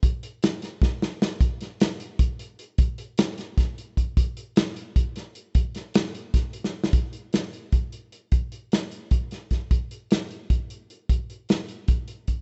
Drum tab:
HH |x-x-x-x-------|x-x-x-x-x-x-x-|x-x-x-x-x-x-x-|x-x-x-x-x-x-x-|
SD |----o-o-o-o-o-|--o-o---------|----o-o-o-----|----o-----o---|
BD |o-------o-----|o-------o-----|o-------o---o-|o-------o-----|

HH |x-x-x-x-x-x---|x-x-x-x-x-x-x-|x-x-x-x-x-x-x-|x-x-x-x-x-x-x-|
SD |--o-o---o--o-o|----o---------|----o-----o-o-|----o---------|
BD |o-------o-----|o-------o-----|o-------o---o-|o-------o-----|

HH |x-x-x-x-x-x-x-|
SD |----o---------|
BD |o-------o---o-|